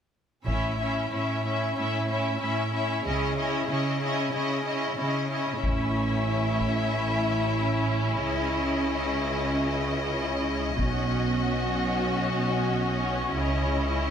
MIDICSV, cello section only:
0, 0, Header, 1, 2, 480
1, 0, Start_track
1, 0, Tempo, 645856
1, 349, Time_signature, 4, 2, 24, 8
1, 6107, Tempo, 640342
1, 10520, End_track
2, 0, Start_track
2, 0, Title_t, "Cello section"
2, 0, Program_c, 0, 48
2, 345, Note_on_c, 0, 45, 33
2, 773, Note_off_c, 0, 45, 0
2, 831, Note_on_c, 0, 45, 38
2, 1255, Note_off_c, 0, 45, 0
2, 1313, Note_on_c, 0, 45, 43
2, 1735, Note_off_c, 0, 45, 0
2, 1796, Note_on_c, 0, 45, 38
2, 2212, Note_off_c, 0, 45, 0
2, 2268, Note_on_c, 0, 49, 45
2, 2685, Note_off_c, 0, 49, 0
2, 2746, Note_on_c, 0, 49, 46
2, 3163, Note_off_c, 0, 49, 0
2, 3221, Note_on_c, 0, 49, 41
2, 3643, Note_off_c, 0, 49, 0
2, 3702, Note_on_c, 0, 49, 39
2, 4130, Note_off_c, 0, 49, 0
2, 4189, Note_on_c, 0, 45, 37
2, 6081, Note_off_c, 0, 45, 0
2, 6109, Note_on_c, 0, 49, 34
2, 8033, Note_off_c, 0, 49, 0
2, 8038, Note_on_c, 0, 47, 33
2, 9923, Note_off_c, 0, 47, 0
2, 9954, Note_on_c, 0, 49, 38
2, 10520, Note_off_c, 0, 49, 0
2, 10520, End_track
0, 0, End_of_file